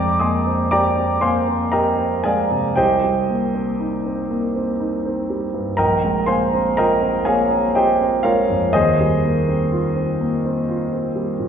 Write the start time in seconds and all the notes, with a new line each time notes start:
Already playing: F2 G#3 D5 G5 A#5 D6
0.19 A#3 D#5 G#5 C6 D#6
0.47 C4
0.71 G4 D5 G5 A#5 D6
0.98 C4
1.21 A#3 C5 F5 G#5 C6
1.48 C4
1.72 G4 A#4 D#5 G5 A#5
1.99 C4
2.24 G#3 G#4 D5 F5 G#5
2.51 C3
2.76 C2 G4 C5 D#5 G5
3.04 G3
3.30 A#3
3.55 C4
3.80 D#4
4.05 C4
4.31 A#3
4.56 C4
4.80 D#4
5.06 C4
5.30 G3
5.54 G2
5.77 A#1 A#4 D#5 G5 A#5
6.04 G#3
6.26 A#3 C5 F5 G#5 C6
6.54 C4
6.77 F4 A#4 D#5 G5 A#5
7.02 C4
7.25 A#3 G#4 C#5 F5 G#5
7.51 C4
7.75 F4 G4 C5 D#5 G5
8.01 C4
8.23 G#3 F4 A#4 C#5 F5
8.50 F2
8.73 D#2 G#4 C5 D#5
9.01 G3
9.25 A#3
9.48 C4
9.72 F4
9.96 C4
10.21 A#3
10.46 C4
10.69 F4
10.93 C4
11.16 G3
11.39 A#2